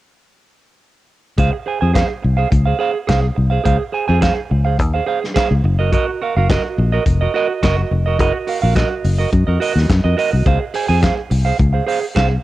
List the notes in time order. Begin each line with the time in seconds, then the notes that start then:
1.38 C#2 G#4 C5 F5, kick, closed hi-hat
1.53 muted clean electric guitar stroke
1.66 G#4 C5 G#5
1.81 F2 G#4 C5 G#5
1.93 G#4 C5 F5, kick, snare, clap, closed hi-hat
2.08 muted clean electric guitar stroke
2.22 C2, muted clean electric guitar stroke
2.37 G#4 C5 F5
2.50 C#2, muted clean electric guitar stroke, kick, closed hi-hat
2.65 G#4 C5 F5
2.79 G#4 C5 F5
2.94 muted clean electric guitar stroke
3.07 C2 G#4 C5 F5, kick, snare, clap, closed hi-hat
3.22 muted clean electric guitar stroke
3.35 C2, muted clean electric guitar stroke
3.50 G#4 C5 F5
3.64 C#2 G#4 C5 F5, kick, closed hi-hat
3.80 muted clean electric guitar stroke
3.92 G#4 C5 G#5
4.08 F2 G#4 C5 G#5
4.21 G#4 C5 F5, kick, snare, clap, closed hi-hat
4.36 muted clean electric guitar stroke
4.50 C#2, muted clean electric guitar stroke
4.65 G#4 C5 F5
4.79 D#2, muted clean electric guitar stroke, kick, closed hi-hat
4.94 G#4 C5 F5
5.07 G#4 C5 F5
5.22 muted clean electric guitar stroke, snare
5.35 G#4 C5 F5, kick, snare, clap, closed hi-hat
5.51 C#2, muted clean electric guitar stroke
5.64 F#1, muted clean electric guitar stroke
5.79 F#4 A#4 D#5
5.92 F#4 A#4 D#5, kick, closed hi-hat
6.08 muted clean electric guitar stroke
6.22 F#4 A#4 F5
6.37 F#1 F#4 A#4 F5
6.50 F#4 A#4 D#5, kick, snare, clap, closed hi-hat
6.65 muted clean electric guitar stroke
6.78 A#1, muted clean electric guitar stroke
6.92 F#4 A#4 D#5
7.06 F1, muted clean electric guitar stroke, kick, closed hi-hat
7.21 F#4 A#4 D#5
7.34 F#4 A#4 D#5
7.50 muted clean electric guitar stroke
7.63 F#1 F#4 A#4 D#5, kick, snare, clap, closed hi-hat
7.78 muted clean electric guitar stroke
7.91 F1, muted clean electric guitar stroke
8.06 F#4 A#4 D#5
8.19 F#1 F#4 A#4 D#5, kick, closed hi-hat
8.35 muted clean electric guitar stroke
8.47 F#4 A#4 F5, open hi-hat
8.62 A#1 F#4 A#4 F5
8.76 F#4 A#4 D#5, kick, snare, clap, closed hi-hat
8.91 muted clean electric guitar stroke
9.04 F#1, muted clean electric guitar stroke, open hi-hat
9.18 F#4 A#4 D#5
9.32 F#2, muted clean electric guitar stroke, kick, closed hi-hat
9.47 F2 F#4 A#4 D#5
9.60 F#4 A#4 D#5, open hi-hat
9.75 D#2, muted clean electric guitar stroke, snare
9.89 F#2, muted clean electric guitar stroke, kick, snare, clap, closed hi-hat
10.04 F2 F#4 A#4 D#5
10.17 F#4 A#4 D#5, open hi-hat
10.33 C2, muted clean electric guitar stroke
10.46 C#2 G#4 C5 F5, kick, closed hi-hat
10.61 muted clean electric guitar stroke
10.74 G#4 C5 G#5, open hi-hat
10.88 F2 G#4 C5 G#5
11.02 G#4 C5 F5, kick, snare, clap, closed hi-hat
11.17 muted clean electric guitar stroke
11.30 C2, muted clean electric guitar stroke, open hi-hat
11.45 G#4 C5 F5
11.59 C#2, muted clean electric guitar stroke, kick, closed hi-hat
11.73 G#4 C5 F5
11.86 G#4 C5 F5, open hi-hat
12.01 muted clean electric guitar stroke
12.15 C2 G#4 C5 F5, kick, snare, clap, closed hi-hat
12.30 muted clean electric guitar stroke